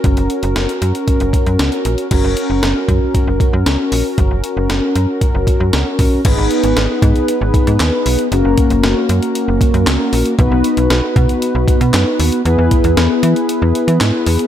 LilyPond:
<<
  \new Staff \with { instrumentName = "Analog polysynth" } { \time 4/4 \key fis \mixolydian \tempo 4 = 116 <cis' fis' ais'>1 | <cis' fis' ais'>1~ | <cis' fis' ais'>1 | <b dis' gis' b'>1 |
<ais cis' fis' ais'>1 | <b dis' fis' b'>1 | <b e' gis' b'>1 | }
  \new Staff \with { instrumentName = "FM bass" } { \clef bass \time 4/4 \key fis \mixolydian fis,,16 fis,,16 r16 fis,,16 fis,,16 r16 fis,16 r8 fis,,16 r16 fis,16 cis,16 r16 ais,,16 r16 | fis,,16 fis,,16 r16 fis,,16 fis,,16 r16 fis,16 r8 fis,,16 r16 fis,16 cis,16 r16 ais,,16 r16 | fis,,16 fis,,16 r16 fis,,16 fis,,16 r16 fis,16 r8 fis,,16 r16 fis,16 cis,16 r16 ais,,16 r16 | gis,,16 gis,,16 r16 gis,,16 gis,,16 r16 gis,16 r8 gis,,16 r16 gis,16 dis,16 r16 b,,16 r16 |
fis,,16 fis,,16 r16 fis,,16 fis,,16 r16 fis,16 r8 fis,,16 r16 fis,16 cis,16 r16 ais,,16 r16 | b,,16 b,,16 r16 b,,16 b,,16 r16 b,16 r8 b,,16 r16 b,16 fis,16 r16 dis,16 r16 | e,16 e,16 r16 e,16 e,16 r16 e16 r8 e,16 r16 e16 gis,16 r16 e,16 r16 | }
  \new DrumStaff \with { instrumentName = "Drums" } \drummode { \time 4/4 <hh bd>16 hh16 hh16 hh16 <hh sn>16 hh16 hh16 hh16 <hh bd>16 hh16 <hh bd>16 hh16 <hh sn>16 hh16 hh16 hh16 | <cymc hh bd>8 hh8 <hh sn>8 <hh bd>8 <hh bd>8 <hh bd>8 <hh sn>8 hho8 | <hh bd>8 hh8 <hh sn>8 hh8 <hh bd>8 <hh bd>8 <hh sn>8 <hho bd>8 | <cymc hh bd>8 hh16 hh16 <hh sn>8 <hh bd>16 hh16 hh8 <hh bd>16 hh16 <hc hh sn>8 hho16 hh16 |
hh8 <hh bd>16 hh16 <hh sn>8 hh16 hh16 hh8 <hh bd>16 hh16 <hc hh sn>8 hho16 hh16 | <hh bd>8 hh16 hh16 <hh sn>8 <hh bd>16 hh16 hh8 <hh bd>16 hh16 <hc hh sn>8 hho16 hh16 | hh8 <hh bd>16 hh16 <hh sn>8 hh16 hh16 hh8 hh16 hh16 <hc hh sn>8 hho16 hh16 | }
>>